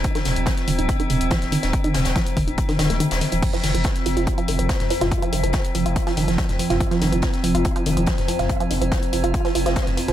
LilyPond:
<<
  \new Staff \with { instrumentName = "Synth drone" } { \clef bass \time 4/4 \key ees \dorian \tempo 4 = 142 <f c'>1~ | <f c'>1 | <f c'>1~ | <f c'>1~ |
<f c'>1~ | <f c'>1 | }
  \new Staff \with { instrumentName = "Synth arpeggio sound" } { \clef bass \time 4/4 \key ees \dorian r16 ees16 des16 r16 f16 r16 ees16 ees'16 r16 ees16 des16 r16 f16 r16 ees16 ees'16 | r16 ees16 des16 r16 f16 r16 ees16 ees'16 r16 ees16 ees16 bes16 ees16 r16 ees16 f16 | r16 f16 ees16 f16 r8 f16 f'16 r16 f16 ees16 f16 r8 f16 f'16 | r16 f16 ees16 f16 r8 f16 f'16 r16 f16 ees16 f16 r8 f16 f'16 |
r16 f16 ees16 f16 r8 f16 f'16 r16 f16 ees16 f16 r8 f16 f'16 | r16 f16 ees16 f16 r8 f16 f'16 r16 f16 f16 f16 r8 f16 f16 | }
  \new Staff \with { instrumentName = "Sub bass" } { \clef bass \time 4/4 \key ees \dorian r8 ees,,16 ees,,16 r8 ees,,16 ees,,16 r8 ees,,16 ees,,16 r16 ees,,16 r16 ees,,16 | r8 ees,,16 ees,,16 r8 ees,,16 ees,,16 r8 ees,,16 ees,,16 r16 ees,,16 r16 ees,,16 | r8 f,,16 f,,16 r8 f,,16 f,,16 r8 f,,16 f,,16 r16 f,,16 r16 f,,16 | r8 f,,16 f,,16 r8 f,,16 f,,16 r8 f,,16 f,,16 r16 f,,16 r16 f,,16 |
r8 f,,16 f,,16 r8 f,,16 f,,16 r8 f,,16 f,,16 r16 f,,16 r16 f,,16 | r8 f,,16 f,,16 r8 f,,16 f,,16 r8 f,,16 f,,16 r16 f,,16 r16 f,,16 | }
  \new DrumStaff \with { instrumentName = "Drums" } \drummode { \time 4/4 <hh bd>16 <hh sn>16 <hh hho sn>16 hh16 <hh bd sn>16 <hh sn>16 <hh hho>16 hh16 <hh bd>16 hh16 <hh hho>16 hh16 <hh bd sn>16 <hh sn>16 <hh hho>16 <hh sn>16 | <hh bd>16 hh16 <hh hho sn>16 <hh sn>16 <hh bd sn>16 hh16 <hh hho bd>16 hh16 <hh bd>16 <hho sn>16 <hh hho sn>16 <hh sn>16 hh16 <hh sn>16 <hho sn>16 hh16 | <cymc hh bd toml>16 <hh sn>16 <hh hho sn>16 hh16 <hh bd sn>16 <hh sn>16 <hh hho>16 hh16 <hh bd>16 hh16 <hh hho>16 hh16 <hh bd sn>16 <hh sn toml>16 <hh hho>16 <hh sn toml>16 | <hh bd toml>16 hh16 <hh hho>16 hh16 <hh bd sn>16 hh16 <hh hho>16 hh16 <hh bd>16 <hho sn>16 <hh hho>16 <hh sn>16 <hh bd sn>16 <hh sn toml>16 <hh hho>16 <hh sn toml>16 |
<hh bd toml>16 <hh sn>16 <hh hho sn>16 hh16 <hh bd sn>16 <hh sn>16 <hh hho>16 hh16 <hh bd>16 hh16 <hh hho>16 hh16 <hh bd sn>16 <hh sn toml>16 <hh hho>16 <hh sn toml>16 | <hh bd toml>16 hh16 <hh hho>16 hh16 <hh bd sn>16 hh16 <hh hho>16 hh16 <hh bd>16 <hho sn>16 <hh hho>16 <hh sn>16 <hh bd sn>16 <hh sn toml>16 <hh hho>16 <hh sn toml>16 | }
>>